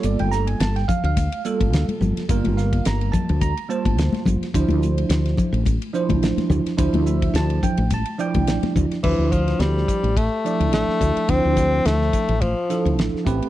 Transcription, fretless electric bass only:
X:1
M:4/4
L:1/16
Q:"Swing 16ths" 1/4=107
K:Dm
V:1 name="Fretless electric bass" clef=bass
G,,, G,,,3 G,,,2 z D,,2 z2 G,,, D,, z G,,, z | G,,, G,,,3 G,,,2 z D,,2 z2 G,,, D,, z G,,, z | D,, D,,3 D,,2 z A,,,2 z2 D,, A,,, z D,, z | D,, D,,3 D,,2 z A,,,2 z2 D,, A,,, z D,, z |
D,, D,,3 D,,2 z A,,,2 z2 D,, A,,, z D,, z | D,, D,,3 D,,2 z A,,,2 z2 D,, A,,, z A,,, z |]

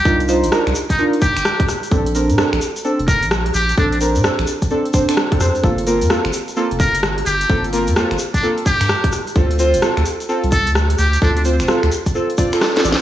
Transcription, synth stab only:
X:1
M:4/4
L:1/16
Q:"Swing 16ths" 1/4=129
K:Dphr
V:1 name="Synth stab"
[DEFB]2 [DEFc]2 [DEFB]2 z2 [DEFB] z6 z | [CDA]2 [CDB]2 [CDA]2 z2 [CDA] z6 z | [CDA]2 [CDB]2 [CDA]2 z2 [CDA] z [CDc] [CDA] z [CDA] [CDc]2 | [B,CFA]2 [B,CFB]2 [B,CFA]2 z2 [B,CFA] z6 z |
[B,CFA]2 [B,CFB]2 [B,CFA]2 z2 [B,CFA] z6 z | [CFA]2 [CFc]2 [CFA]2 z2 [CFA] z6 z | [CFA]2 [CFc]2 [CFA]2 z2 [CFA] z [CFd] [CFA] z [CFA] [CFd]2 |]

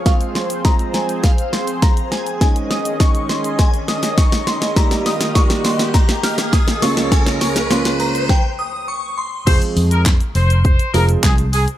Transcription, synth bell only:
X:1
M:4/4
L:1/8
Q:1/4=102
K:Fm
V:1 name="Synth bell"
f c' b a f c' b a | a e' d' c' a e' d' c' | b e' d' c' b f' e' d' | a d' c' b g e' d' c' |
z8 |]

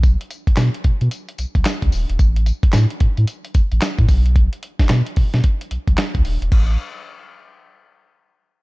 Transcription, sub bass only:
X:1
M:4/4
L:1/16
Q:"Swing 16ths" 1/4=111
K:Bmix
V:1 name="Sub bass" clef=bass
B,,,2 z2 B,, z B,, B,, z2 B,,, B,,, z C,, D,,, E,,, | A,,,3 z A,, z A,, A,, z2 A,,, A,,, z A,, B,,,2- | B,,,2 z2 B,, z B,, B,, z2 B,,, B,,, z C,, D,,, E,,, | A,,,2 z12 z2 |]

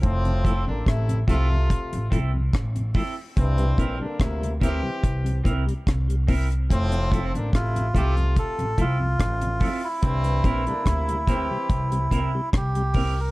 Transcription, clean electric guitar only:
X:1
M:4/4
L:1/8
Q:1/4=72
K:F
V:1 name="Clean electric guitar"
z [CEA] z [CEA] z [CEA] z [CEA] | z [CEB] z [CEB] z [CEB] z [CEB] | z [CEA] z [CEA] z [CEA] z [CEA] | z [CEB] z [CEB] z [CEB] z [CEB] |]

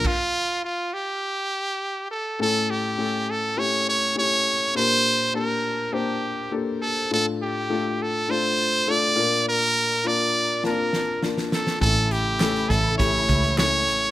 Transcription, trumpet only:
X:1
M:4/4
L:1/8
Q:1/4=102
K:Aphr
V:1 name="Trumpet"
F2 F G4 A | A G2 A ^c c c2 | c2 B2 G2 z A | A G2 A c2 d2 |
B2 d2 B2 z A | A G2 A ^c2 c2 |]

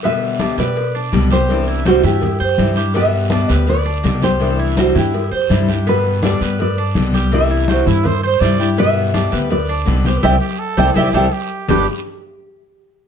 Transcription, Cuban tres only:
X:1
M:4/4
L:1/8
Q:1/4=165
K:G
V:1 name="Cuban tres"
B,2 D B2 D2 G- | G E c E2 c2 G | B,2 D B2 D2 G- | G E c E2 c2 G |
B,2 D B2 D2 G- | G E c E2 c2 G | B,2 D B2 D2 G | [EGc] z2 [EGc] [EGc] [EGc] z2 |
[G,DG] z6 z |]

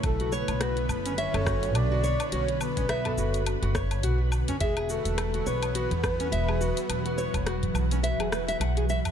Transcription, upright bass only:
X:1
M:4/4
L:1/16
Q:"Swing 16ths" 1/4=105
K:Bdor
V:1 name="Upright bass" clef=bass
B,,,3 B,,,3 F,,,3 F,,,3 B,,,3 z | B,,,3 B,,,3 F,,,3 F,,,3 B,,,3 z | E,,,3 E,,,3 B,,,3 E,,3 E,,,3 z | E,,,3 E,,,3 B,,,3 E,,,3 B,,,3 z |]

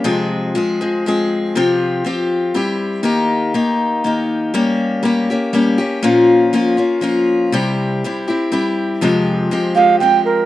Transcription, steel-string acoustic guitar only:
X:1
M:3/4
L:1/8
Q:1/4=121
K:Fm
V:1 name="Steel-string acoustic guitar"
[F,,C,F,A,CA]2 [F,A,CA] [F,A,CA] [F,A,CA]2 | [C,F,CFG]2 [F,CFG]2 [G,C=EG]2 | [E,B,EG]2 [E,B,EG]2 [E,B,EG]2 | [G,B,DG]2 [G,B,DG] [B,DG] [G,B,DG] [B,DG] |
[B,,F,B,DF]2 [F,B,DF] [B,DF] [F,B,DF]2 | [C,G,C=EG]2 [G,CEG] [CEG] [G,CEG]2 | [F,,C,F,A,CG]2 [F,A,CG] [F,A,CG] [F,A,CG]2 |]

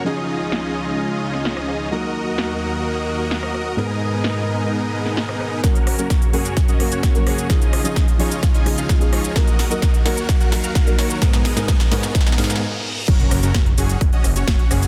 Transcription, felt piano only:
X:1
M:4/4
L:1/16
Q:1/4=129
K:Gb
V:1 name="Felt piano"
[F,DEA]16 | [G,B,EB]16 | [A,,A,CEB]16 | [G,B,DB]2 z [G,B,DB] z2 [G,B,DB] z3 [G,B,DB]3 [G,B,DB]3 |
[F,DEA]2 z [F,DEA] z2 [F,DEA] z3 [F,DEA]3 [F,DEA]3 | [G,B,EB]2 z [G,B,EB] z2 [G,B,EB] z3 [G,B,EB]3 [G,B,EB]3 | [A,,A,CEB]2 z [A,,A,CEB] z2 [A,,A,CEB] z3 [A,,A,CEB]2 z4 | z16 |]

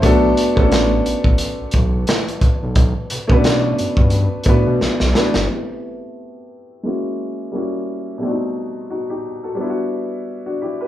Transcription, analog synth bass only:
X:1
M:4/4
L:1/16
Q:"Swing 16ths" 1/4=88
K:Bphr
V:1 name="Analog synth bass" clef=bass
B,,,2 z A,,,3 A,,, A,,, z B,,, B,,,2 z2 B,,, B,,, | B,,, z B,, B,,3 G,, G,,2 z A,, B,, B,,, B,,, z G,,, | z16 | z16 |]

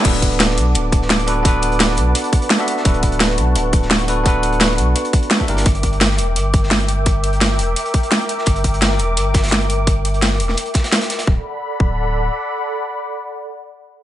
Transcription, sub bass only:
X:1
M:4/4
L:1/8
Q:1/4=171
K:D
V:1 name="Sub bass" clef=bass
D,,,3 B,,, D,,,4- | D,,,3 B,,, z4 | D,,,3 B,,, D,,,4- | D,,,3 B,,, z3 G,,, |
G,,,3 E,,, G,,,4- | G,,,3 E,,, z4 | G,,,3 E,,, G,,,4- | G,,,3 E,,, z4 |
D,,, z2 D,,,3 z2 | z8 |]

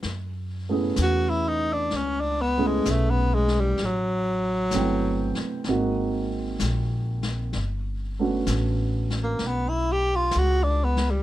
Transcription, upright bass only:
X:1
M:4/4
L:1/8
Q:"Swing" 1/4=64
K:F#m
V:1 name="Upright bass" clef=bass
F,,2 E,,2 C,,2 B,,,2 | A,,,2 =G,,, z ^G,,,2 ^A,,,2 | =G,,,2 A,,,2 B,,,2 C,,2 |]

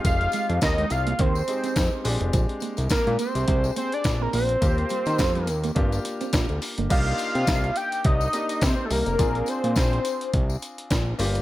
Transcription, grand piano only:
X:1
M:4/4
L:1/8
Q:"Swing 16ths" 1/4=105
K:Bbmix
V:1 name="Grand piano"
[A,CEG]4- [A,CEG] [A,CEG]2 [A,CDG]- | [A,CDG]6- [A,CDG] z | [B,CFG]4 [B,DFG]4 | [B,DEG]4- [B,DEG] [B,DEG]3 |
[CDFA]6- [CDFA] [B,DFG] |]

